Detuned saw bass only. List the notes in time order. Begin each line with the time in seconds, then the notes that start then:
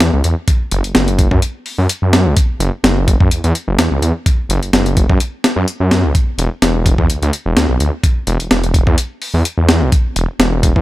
0.01 E2
0.14 C#2
0.24 E2
0.72 F#1
0.84 F#1
0.95 F#1
1.31 F#2
1.78 F#2
2.02 F#2
2.26 C#2
2.60 F#1
2.84 F#1
3.20 F#2
3.31 E2
3.44 E2
3.68 F#1
3.78 E2
3.91 C#2
4.02 E2
4.49 F#1
4.62 F#1
4.73 F#1
5.10 F#2
5.56 F#2
5.80 F#2
6.04 C#2
6.38 E1
6.62 E1
6.98 E2
7.10 D2
7.22 D2
7.46 E1
7.57 D2
7.69 B1
7.80 D2
8.27 E1
8.40 E1
8.51 E1
8.87 E2
9.34 E2
9.58 E2
9.81 B1
10.16 E1
10.39 E1
10.76 E2